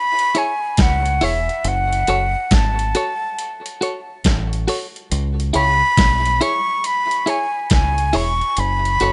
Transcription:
0.00 0.40 B5 loud
0.19 closed hi-hat medium
0.35 0.52 E4 medium
0.35 0.53 G#4 medium
0.35 0.53 C#5 medium
0.35 0.83 G#5 loud
0.35 closed hi-hat medium
0.77 1.20 C#2 medium
0.77 kick loud
0.77 snare loud
0.77 closed hi-hat medium
0.82 1.26 F#5 loud
1.06 closed hi-hat medium
1.21 1.48 E1 medium
1.21 1.39 E4 medium
1.21 1.40 G#4 medium
1.21 1.40 C#5 medium
1.21 1.70 E5 loud
1.21 open hi-hat medium
1.49 muted clean electric guitar stroke medium
1.49 closed hi-hat soft
1.64 2.06 F#1 loud
1.64 2.56 F#5 loud
1.64 closed hi-hat medium
1.93 closed hi-hat medium
2.07 2.34 F#1 loud
2.07 2.26 F#4 medium
2.07 2.26 A4 medium
2.07 2.27 C#5 loud
2.07 closed hi-hat medium
2.51 2.93 G#1 medium
2.51 3.83 A5 loud
2.51 kick loud
2.51 snare loud
2.51 closed hi-hat medium
2.79 closed hi-hat medium
2.95 3.13 F#4 medium
2.95 3.13 A4 medium
2.95 3.13 C#5 medium
2.95 closed hi-hat medium
3.39 closed hi-hat medium
3.66 closed hi-hat medium
3.81 3.99 F#4 medium
3.81 3.99 A4 medium
3.81 4.00 C#5 medium
3.81 closed hi-hat medium
4.24 4.66 A1 medium
4.24 kick loud
4.24 snare loud
4.24 closed hi-hat medium
4.53 closed hi-hat soft
4.68 4.85 F#4 medium
4.68 4.86 A4 loud
4.68 4.86 C#5 medium
4.68 open hi-hat medium
4.96 closed hi-hat soft
5.12 5.53 C#2 loud
5.12 closed hi-hat loud
5.40 closed hi-hat medium
5.53 5.81 C#2 loud
5.53 5.72 E4 medium
5.53 5.72 G#4 medium
5.53 5.73 C#5 loud
5.53 6.43 B5 loud
5.53 closed hi-hat medium
5.97 6.39 B1 medium
5.97 kick loud
5.97 snare loud
5.97 closed hi-hat loud
6.26 closed hi-hat medium
6.41 6.59 E4 medium
6.41 6.59 G#4 medium
6.41 6.59 C#5 medium
6.41 6.88 C#6 loud
6.41 closed hi-hat medium
6.84 7.31 B5 loud
6.84 closed hi-hat medium
7.11 closed hi-hat medium
7.26 7.45 E4 medium
7.26 7.45 G#4 medium
7.26 7.46 C#5 medium
7.26 7.72 G#5 loud
7.26 closed hi-hat medium
7.70 8.13 C#2 medium
7.70 8.18 G#5 loud
7.70 kick loud
7.70 snare loud
7.70 closed hi-hat medium
7.98 closed hi-hat medium
8.13 8.41 E1 medium
8.13 8.31 E4 medium
8.13 8.32 G#4 loud
8.13 8.32 C#5 loud
8.13 8.61 C#6 loud
8.13 open hi-hat medium
8.41 closed hi-hat soft
8.57 8.99 F#1 loud
8.57 9.13 B5 loud
8.57 closed hi-hat medium
8.85 closed hi-hat soft
9.00 9.13 F#1 medium
9.00 9.13 F#4 medium
9.00 9.13 A4 medium
9.00 9.13 C#5 medium
9.00 closed hi-hat medium

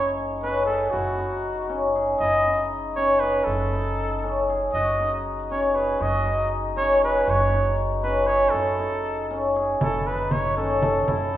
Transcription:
0.00 0.91 F#1 medium
0.00 0.43 C#4 medium
0.00 0.99 D#4 medium
0.00 0.68 G#4 medium
0.00 0.14 C#5 medium
0.43 1.69 C#4 medium
0.43 0.65 B4 medium
0.65 1.95 G#4 medium
0.65 0.92 A4 medium
0.91 2.18 F#1 medium
0.91 1.24 E4 medium
0.91 1.94 F#4 medium
1.18 2.27 D#4 medium
1.69 2.97 C#4 medium
1.95 3.22 G#4 medium
2.19 3.45 F#1 medium
2.19 2.54 E4 medium
2.19 2.67 D#5 medium
2.48 3.54 D#4 medium
2.96 4.23 C#4 medium
2.96 3.21 C#5 medium
3.20 4.49 G#4 medium
3.20 3.46 B4 medium
3.45 4.71 F#1 medium
3.45 3.79 E4 medium
3.45 4.47 A4 medium
3.73 5.00 D#4 medium
4.23 5.51 C#4 medium
4.49 5.75 G#4 medium
4.73 5.98 F#1 medium
4.73 6.00 F#4 medium
4.73 5.20 D#5 medium
5.01 6.25 D#4 medium
5.51 6.76 C#4 medium
5.51 5.77 C#5 medium
5.75 7.01 G#4 medium
5.75 6.03 B4 medium
6.00 7.25 F#1 medium
6.00 7.27 F#4 medium
6.00 6.52 D#5 medium
6.26 7.52 D#4 medium
6.77 8.03 C#4 medium
6.77 7.01 C#5 medium
7.02 8.28 G#4 medium
7.02 7.31 B4 medium
7.27 8.52 F#1 medium
7.27 10.52 F#4 medium
7.27 7.79 C#5 medium
7.53 8.60 D#4 medium
8.03 9.30 C#4 medium
8.03 8.29 B4 medium
8.27 9.55 G#4 medium
8.27 8.52 C#5 medium
8.51 9.78 F#1 medium
8.51 8.86 E4 medium
8.51 9.54 A4 medium
8.80 9.87 D#4 medium
9.31 10.57 C#4 medium
9.56 10.89 G#4 medium
9.81 11.05 F#1 medium
9.81 10.12 E4 medium
9.81 10.09 A4 medium
9.81 frame drum medium
10.06 11.14 D#4 medium
10.06 10.33 B4 medium
10.31 10.56 C#5 medium
10.31 frame drum medium
10.57 11.37 C#4 medium
10.57 11.04 A4 medium
10.82 11.37 A4 medium
10.82 frame drum medium
11.07 11.37 F#1 medium
11.07 11.37 E4 medium
11.07 11.37 A4 medium
11.07 frame drum medium
11.34 11.37 D#4 medium

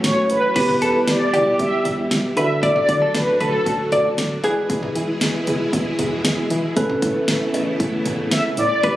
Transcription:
0.00 0.16 A1 loud
0.00 0.54 E3 medium
0.00 0.52 F#3 medium
0.00 0.52 A3 medium
0.00 0.54 A3 medium
0.00 0.52 C#4 medium
0.00 0.54 C#4 medium
0.00 0.52 F#4 medium
0.00 snare loud
0.04 0.31 C#5 loud
0.04 closed hi-hat medium
0.30 0.42 A1 loud
0.30 1.10 B4 loud
0.30 closed hi-hat medium
0.55 0.68 E1 loud
0.55 2.35 B2 medium
0.55 2.35 E3 medium
0.55 2.35 G3 medium
0.55 2.33 B3 medium
0.55 2.33 E4 medium
0.55 2.35 E4 medium
0.55 2.33 G4 medium
0.55 2.35 G4 medium
0.55 0.71 B4 loud
0.55 kick loud
0.55 closed hi-hat medium
0.55 crash loud
0.69 mid tom medium
0.81 0.93 E2 loud
0.81 0.97 A4 medium
0.81 closed hi-hat medium
1.07 1.19 E1 loud
1.07 1.56 D5 loud
1.07 snare loud
1.07 closed hi-hat medium
1.33 1.45 E1 loud
1.33 1.82 G4 medium
1.33 closed hi-hat medium
1.33 mid tom medium
1.59 1.71 E1 loud
1.59 2.08 E5 loud
1.59 kick loud
1.59 closed hi-hat medium
1.85 1.97 E1 loud
1.85 closed hi-hat medium
1.85 mid tom loud
1.98 2.10 E1 loud
2.11 2.23 E1 loud
2.11 snare loud
2.11 closed hi-hat medium
2.37 4.42 A2 medium
2.37 4.42 D3 medium
2.37 2.72 D3 loud
2.37 4.42 F#3 medium
2.37 4.40 D4 medium
2.37 4.42 D4 medium
2.37 4.40 F#4 medium
2.37 4.42 F#4 medium
2.37 4.40 A4 medium
2.37 2.45 B4 medium
2.37 2.73 E5 loud
2.37 closed hi-hat medium
2.63 2.79 D5 loud
2.63 kick loud
2.63 closed hi-hat medium
2.76 3.12 D5 loud
2.76 mid tom medium
2.89 3.00 D3 loud
2.89 kick loud
2.89 closed hi-hat medium
3.02 3.17 A4 medium
3.14 3.26 D2 loud
3.14 3.41 B4 loud
3.14 snare loud
3.14 closed hi-hat medium
3.40 3.52 D2 loud
3.40 4.14 A4 medium
3.40 3.48 B4 medium
3.40 closed hi-hat medium
3.40 mid tom medium
3.66 3.78 D2 loud
3.66 kick loud
3.66 closed hi-hat medium
3.92 4.04 D2 loud
3.92 4.08 D5 medium
3.92 closed hi-hat medium
3.92 mid tom loud
4.05 4.17 D2 loud
4.18 4.30 D2 loud
4.18 snare loud
4.18 closed hi-hat medium
4.44 6.74 B2 medium
4.44 4.79 E3 loud
4.44 6.74 E3 medium
4.44 6.74 G#3 medium
4.44 6.47 E4 medium
4.44 6.74 E4 medium
4.44 6.74 G#4 medium
4.44 6.47 G#4 medium
4.44 4.52 G#4 medium
4.44 6.47 B4 medium
4.44 closed hi-hat medium
4.70 kick loud
4.70 closed hi-hat medium
4.83 mid tom medium
4.95 5.07 E3 loud
4.95 closed hi-hat medium
5.21 5.33 E2 loud
5.21 snare loud
5.21 closed hi-hat medium
5.47 5.59 E2 loud
5.47 closed hi-hat medium
5.47 mid tom medium
5.73 5.85 E2 loud
5.73 kick loud
5.73 closed hi-hat medium
5.99 6.11 E2 loud
5.99 closed hi-hat medium
5.99 mid tom loud
6.12 6.24 E2 loud
6.25 6.36 E2 loud
6.25 snare loud
6.25 closed hi-hat medium
6.50 6.62 E3 loud
6.50 closed hi-hat medium
6.76 6.88 A1 loud
6.76 8.81 C#3 medium
6.76 8.81 E3 medium
6.76 8.81 A3 medium
6.76 8.81 B3 medium
6.76 8.79 C#4 medium
6.76 8.81 E4 medium
6.76 8.80 A4 medium
6.76 8.80 B4 medium
6.76 kick loud
6.76 closed hi-hat medium
6.90 mid tom medium
7.02 7.14 A2 medium
7.02 kick loud
7.02 closed hi-hat medium
7.28 7.40 A1 loud
7.28 snare loud
7.28 closed hi-hat medium
7.54 7.66 A1 loud
7.54 closed hi-hat medium
7.54 cowbell medium
7.80 7.92 A1 loud
7.80 kick loud
7.80 closed hi-hat medium
8.05 8.18 A1 loud
8.05 closed hi-hat medium
8.05 mid tom loud
8.19 8.30 A1 loud
8.31 8.44 A1 loud
8.31 8.44 E5 medium
8.31 snare loud
8.31 closed hi-hat medium
8.57 8.69 A2 loud
8.57 8.96 D5 loud
8.57 closed hi-hat medium
8.83 8.95 E1 loud
8.83 8.96 B2 medium
8.83 8.96 E3 medium
8.83 8.96 G3 medium
8.83 8.96 E4 medium
8.83 8.96 G4 medium
8.83 8.96 B4 medium
8.83 8.96 B4 loud
8.83 kick loud
8.83 closed hi-hat medium

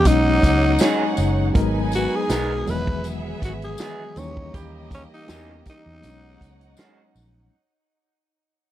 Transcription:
0.04 0.39 B1 loud
0.04 1.12 F#3 medium
0.04 2.64 G#3 medium
0.04 1.12 G#3 medium
0.04 1.52 B3 medium
0.04 1.12 B3 medium
0.04 1.13 C#4 medium
0.04 1.53 D#4 medium
0.04 1.52 D#4 medium
0.04 1.13 D#4 medium
0.04 1.19 D#4 loud
0.04 1.52 C#5 medium
0.04 1.52 F#5 medium
0.04 kick loud
0.04 closed hi-hat medium
0.04 tambourine medium
0.43 0.76 C#2 loud
0.43 kick medium
0.43 snare soft
0.43 closed hi-hat medium
0.43 tambourine soft
0.79 1.02 F#3 medium
0.79 1.02 C#4 medium
0.79 1.03 D#4 medium
0.79 1.03 G#4 medium
0.79 snare loud
0.79 closed hi-hat medium
0.79 tambourine medium
1.17 1.51 F#1 medium
1.17 closed hi-hat medium
1.17 tambourine medium
1.53 2.06 G#1 loud
1.53 2.61 F#3 medium
1.53 2.61 G#3 medium
1.53 2.65 B3 medium
1.53 2.62 B3 medium
1.53 2.65 D#4 medium
1.53 2.62 D#4 loud
1.53 4.13 F#4 medium
1.53 2.65 G#4 medium
1.53 2.62 A#4 medium
1.53 2.64 B4 medium
1.53 2.64 G#5 medium
1.53 kick loud
1.53 closed hi-hat medium
1.92 2.17 F#4 medium
1.92 closed hi-hat medium
1.92 tambourine medium
2.16 2.72 G#4 medium
2.29 2.63 B1 loud
2.29 2.51 F#3 medium
2.29 2.52 B3 medium
2.29 2.52 D#4 medium
2.29 2.52 A#4 medium
2.29 snare loud
2.29 closed hi-hat medium
2.29 tambourine medium
2.66 3.33 E1 loud
2.66 3.88 D#3 medium
2.66 3.86 E3 medium
2.66 3.87 F#3 medium
2.66 4.15 F#3 medium
2.66 3.87 G#3 medium
2.66 4.13 B3 medium
2.66 4.15 B3 medium
2.66 3.88 B3 medium
2.66 4.13 G#4 medium
2.66 4.15 G#4 medium
2.66 4.13 E5 loud
2.66 open hi-hat medium
2.66 tambourine soft
2.70 3.06 B4 loud
2.87 kick loud
3.04 closed hi-hat loud
3.04 tambourine medium
3.42 3.75 G#1 medium
3.42 3.53 F#4 medium
3.42 kick medium
3.42 snare soft
3.42 closed hi-hat medium
3.42 tambourine soft
3.62 4.20 G#4 medium
3.62 closed hi-hat medium
3.78 4.01 F#3 medium
3.78 4.01 B3 medium
3.78 4.02 D#4 medium
3.78 4.02 G#4 medium
3.78 snare loud
3.78 closed hi-hat medium
3.78 tambourine medium
4.16 4.49 D#2 loud
4.16 5.36 E3 medium
4.16 6.01 E3 medium
4.16 5.36 G3 medium
4.16 5.99 A#3 medium
4.16 5.37 A#3 medium
4.16 6.02 C#4 medium
4.16 5.37 C#4 medium
4.16 6.01 D#4 medium
4.16 5.37 D#4 medium
4.16 5.99 G4 medium
4.16 6.01 G4 medium
4.16 4.55 C#5 loud
4.16 5.99 D#5 medium
4.16 closed hi-hat medium
4.16 tambourine medium
4.37 kick loud
4.54 5.05 D#2 medium
4.54 5.09 E3 medium
4.54 5.09 C#4 medium
4.54 5.09 G4 loud
4.54 kick loud
4.54 closed hi-hat medium
4.54 tambourine soft
4.91 5.03 C#4 loud
4.91 kick loud
4.91 closed hi-hat medium
4.91 tambourine medium
5.14 5.64 D#4 loud
5.28 5.62 E2 loud
5.28 5.51 E3 medium
5.28 5.51 A#3 medium
5.28 5.51 C#4 medium
5.28 5.51 G4 medium
5.28 snare loud
5.28 closed hi-hat medium
5.28 tambourine medium
5.65 kick medium
5.65 closed hi-hat medium
5.65 tambourine soft
5.69 7.13 D#4 loud
5.86 6.01 E2 medium
6.02 6.36 B1 loud
6.02 7.09 F#3 medium
6.02 7.09 G#3 medium
6.02 7.51 G#3 medium
6.02 7.10 B3 medium
6.02 7.51 B3 medium
6.02 7.10 C#4 medium
6.02 6.11 D4 medium
6.02 7.51 D#4 medium
6.02 7.50 D#4 medium
6.02 7.49 C#5 medium
6.02 7.50 F#5 loud
6.02 closed hi-hat loud
6.02 tambourine medium
6.10 7.13 D#4 medium
6.41 6.74 C#2 medium
6.41 kick medium
6.41 closed hi-hat medium
6.41 tambourine soft
6.61 closed hi-hat medium
6.77 6.99 D#3 medium
6.77 7.00 G#3 medium
6.77 7.00 C#4 medium
6.77 7.00 F#4 loud
6.77 snare loud
6.77 closed hi-hat medium
6.77 tambourine medium
7.15 7.48 A#1 medium
7.15 open hi-hat soft
7.15 tambourine medium

